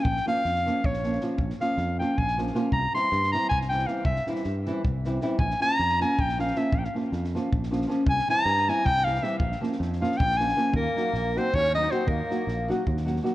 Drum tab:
SD |-oo-ooo--oooo-|-oo-o-o--oooo-|--o-ooo--oooo-|-oooo-o---o-o-|
BD |o-------o-----|o-------o-----|o-------o-----|o-------o-----|

SD |-oo-ooo--oooo-|-oo-ooo--oooo-|-oo-ooo--oooo-|-ooooooo-oooo-|
BD |o-------o-----|o-------o-----|o-------o-----|o-------o-----|

SD |--o-o-o--oooo-|--o-o-o--oooo-|
BD |o-------o-----|o-------o-----|